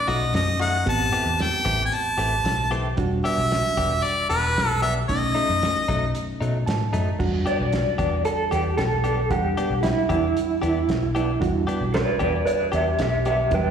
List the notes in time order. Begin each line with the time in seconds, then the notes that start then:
Already playing: A3 C#4 D#4
0.08 B1 F#3 A3 D#4 F#4 D#5, closed hi-hat
0.34 F#2 D#5, snare, closed hi-hat
0.60 F#3 A3 D#4 F#4 F#5, closed hi-hat
0.86 A1 B3 C4 G4 A5, kick, closed hi-hat
1.12 E3 A3 C4 G4, closed hi-hat
1.26 E2
1.39 G5, snare, closed hi-hat
1.65 A1 E3 A3 C4 G4, kick, closed hi-hat
1.86 G#5
1.92 A5, closed hi-hat
2.18 A1 E3 A3 C4 G4, closed hi-hat
2.44 B1, snare, closed hi-hat
2.71 E3 A3 C4 G4, closed hi-hat
2.97 E1 G3 D4 F#4, kick, closed hi-hat
3.24 B3 D4 G4 E5, closed hi-hat
3.38 B1
3.51 snare, closed hi-hat
3.77 E1 B3 D4 G4, kick, closed hi-hat
4.03 D5, closed hi-hat
4.30 E1 B3 D4 G4 B4, closed hi-hat
4.56 B1, snare, closed hi-hat
4.82 B3 D4 G4 E5, closed hi-hat
5.09 B1 A3 C#4 D#4 D#5, kick, closed hi-hat
5.35 F#3 A3 D#4, closed hi-hat
5.49 F#2
5.62 snare, closed hi-hat
5.88 B1 F#3 A3 D#4, kick, closed hi-hat
6.15 closed hi-hat
6.41 B2 F#3 A3 D#4, closed hi-hat
6.66 A2 A5, snare, closed hi-hat
6.93 F#2 F#3 A3 D#4, closed hi-hat
7.19 E2 G3 D4 F#4, kick, crash
7.46 B3 D4 G4 D5, closed hi-hat
7.60 B1
7.72 snare, closed hi-hat
7.98 E2 B3 D4 G4, kick, closed hi-hat
8.25 A4, closed hi-hat
8.51 E2 B3 D4 G4, closed hi-hat
8.77 B1 A4, snare, closed hi-hat
9.04 B3 D4 G4, closed hi-hat
9.30 E2 G3 D4 G4 F#5, kick, closed hi-hat
9.57 B3 D4 G4, closed hi-hat
9.70 B1
9.83 E4, snare, closed hi-hat
10.09 E2 B3 D4 E4 G4, kick, closed hi-hat
10.37 closed hi-hat
10.62 E2 B3 D4 G4, closed hi-hat
10.88 B1, snare, closed hi-hat
11.15 B3 D4 G4, closed hi-hat
11.40 E2 G3 D4 F#4, kick, closed hi-hat
11.67 B3 D4 G4, closed hi-hat
11.81 B1
11.94 B4 D5, snare, closed hi-hat
12.19 E2 B3 D4 G4 B4 D5, kick, closed hi-hat
12.46 B4 D5, closed hi-hat
12.72 E2 B3 D4 G4 E5, closed hi-hat
12.99 B1 G4 E5, snare, closed hi-hat
13.25 B3 D4 G4 E5, closed hi-hat
13.51 E2 F#3 G3 D4 B4, kick, closed hi-hat
13.55 G5